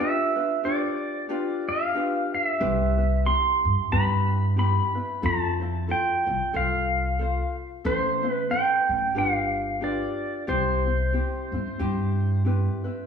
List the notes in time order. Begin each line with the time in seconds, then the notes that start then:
Already playing: G4
0.00 D4 F4 B4 E5
0.36 D4 F4 B4
0.64 D4 F4 G4 B4 D5
1.29 D4 F4 G4 B4
1.69 F5
1.94 D4 F4 G4 B4
2.34 E5
2.60 C2 C4 E4 G4 B4
2.98 C4 E4 B4
3.26 C4 E4 G4 C6
3.65 G2
3.92 G2 C4 E4 G4 B4 B5
4.57 C4 E4 G4 B4 B5
4.95 C4 E4 B4
5.22 F2 E4 F4 A4 C5 A5
5.60 E4 F4 C5
5.88 E4 F4 A4 C5 G5
6.26 C2 E4 F4 C5
6.53 C2 F4 A4 C5 F5
7.19 F4 A4 C5
7.84 A1 C4 E4 A4 C5
8.23 C4 E4 C5
8.29 B4
8.50 C4 E4 A4 C5 G5
8.89 A1
9.15 G1 D4 F4 G4 B4 F5
9.81 D4 F4 G4 B4 D5
10.47 C2 C4 E4 G4 C5
10.86 C4 E4
11.13 C4 E4 G4
11.52 G2 C4 E4
11.79 G2 C4 E4 G4
12.45 C4 E4 G4 B4
12.84 C4 E4 B4